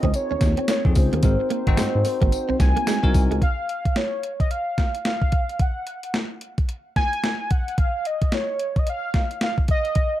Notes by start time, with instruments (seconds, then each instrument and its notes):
Already playing: tine electric piano C4 D#4 F4 G#4 A#4, soft synth lead D#5
0.03 analog synth bass C#2, clean electric guitar C4, kick, closed hi-hat
0.14 soft synth lead C#5, closed hi-hat, tambourine
0.31 analog synth bass D#2, clean electric guitar C#4
0.41 analog synth bass D#2, muted clean electric guitar stroke, kick, snare, closed hi-hat, tambourine
0.57 clean electric guitar C4, closed hi-hat
0.68 clean electric guitar A#3, soft synth lead C#5, snare, closed hi-hat, tambourine
0.85 analog synth bass F2, tine electric piano C4 D#4 F4 G#4, kick
0.95 analog synth bass C#2, soft synth lead C5, muted clean electric guitar stroke, kick, open hi-hat, tambourine
1.13 analog synth bass D#2, clean electric guitar A#3, closed hi-hat
1.23 analog synth bass G#1, clean electric guitar G#3, tine electric piano C4 D#4 F#4 A#4, kick, closed hi-hat, tambourine
1.40 muted clean electric guitar stroke
1.50 clean electric guitar A#3, closed hi-hat
1.67 analog synth bass G#1, tine electric piano C4 D#4 F#4 C5, kick, closed hi-hat
1.77 analog synth bass G#2, clean electric guitar G#3, snare, closed hi-hat, tambourine
1.95 analog synth bass G#2
2.05 muted clean electric guitar stroke, open hi-hat, tambourine
2.22 analog synth bass G#1, clean electric guitar A#3, kick, closed hi-hat
2.32 closed hi-hat, tambourine
2.49 analog synth bass C2, clean electric guitar C4
2.60 analog synth bass C2, soft synth lead G#5, muted clean electric guitar stroke, kick, snare, closed hi-hat, tambourine
2.76 clean electric guitar A#3, closed hi-hat
2.87 clean electric guitar G#3, snare, closed hi-hat, tambourine
3.03 analog synth bass C2, tine electric piano C4 D#4 F#4 A#4, kick
3.14 analog synth bass C2, muted clean electric guitar stroke, kick, open hi-hat, tambourine
3.31 analog synth bass C#2, clean electric guitar G#3, closed hi-hat
3.42 soft synth lead F5, kick, closed hi-hat
3.69 closed hi-hat
3.85 kick, closed hi-hat
3.96 soft synth lead C#5, snare, closed hi-hat
4.23 closed hi-hat
4.40 soft synth lead D#5, kick, closed hi-hat
4.51 soft synth lead F5, closed hi-hat
4.78 kick, snare, closed hi-hat
4.95 closed hi-hat
5.05 soft synth lead F5, snare, closed hi-hat
5.22 kick
5.32 kick, closed hi-hat
5.49 closed hi-hat
5.59 soft synth lead F#5, kick, closed hi-hat
5.87 closed hi-hat
6.03 closed hi-hat
6.14 snare, closed hi-hat
6.41 closed hi-hat
6.58 kick, closed hi-hat
6.69 closed hi-hat
6.96 soft synth lead G#5, kick, snare, closed hi-hat
7.13 closed hi-hat
7.24 snare, closed hi-hat
7.51 soft synth lead F#5, kick, closed hi-hat
7.68 closed hi-hat
7.78 soft synth lead F5, kick, closed hi-hat
8.05 soft synth lead D#5, closed hi-hat
8.22 kick, closed hi-hat
8.32 soft synth lead C#5, snare, closed hi-hat
8.59 closed hi-hat
8.76 soft synth lead D#5, kick, closed hi-hat
8.87 soft synth lead F5, closed hi-hat
9.14 kick, snare, closed hi-hat
9.31 closed hi-hat
9.41 soft synth lead F5, snare, closed hi-hat
9.58 kick
9.68 soft synth lead D#5, kick, closed hi-hat
9.85 closed hi-hat
9.95 kick, closed hi-hat